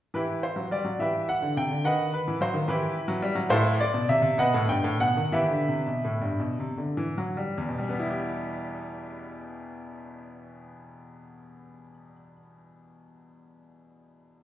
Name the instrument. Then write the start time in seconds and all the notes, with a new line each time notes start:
grand piano
0.14 E3 E4 G4 B4
0.43 C5
0.56 F#3
0.71 G3 D5
0.85 F#3
0.99 E3 G4 B4 E5
1.29 F#5
1.42 D3
1.57 C3 G5
1.71 D3
1.84 D#3 B4 D#5 F#5
2.14 B4
2.28 E3
2.41 F#3 C5
2.54 D#3
2.68 E3 E4 G4 B4
3.08 F#3
3.22 G3
3.35 F#3
3.50 A2 E4 A4 C5
3.81 D5
3.94 B2
4.09 C3 E5
4.22 C3
4.38 B2 B4 D#5 F#5
4.54 A2
4.68 G2 G5
4.84 A2
5.00 B2 F#5
5.17 D#3
5.32 E3 G4 B4 E5
5.51 D3
5.68 C3
5.87 B2
6.05 A2
6.21 G2
6.40 B2
6.60 C3
6.78 D3
6.97 E3
7.18 F#3
7.37 G3
7.58 E2
7.68 B2
7.78 G3
7.89 B3
8.00 E4
8.10 G4